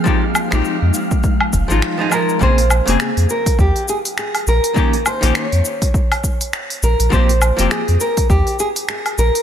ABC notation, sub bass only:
X:1
M:4/4
L:1/16
Q:"Swing 16ths" 1/4=102
K:Bbdor
V:1 name="Sub bass" clef=bass
z3 B,,, z F,, z4 F,,, A,,, z4 | B,,,3 F,,, z F,, z2 E,, z4 z B,,, z | z3 B,,, z F,, z8 B,,, B,,, | B,,,3 F,,, z F,, z2 E,, z4 z B,,, z |]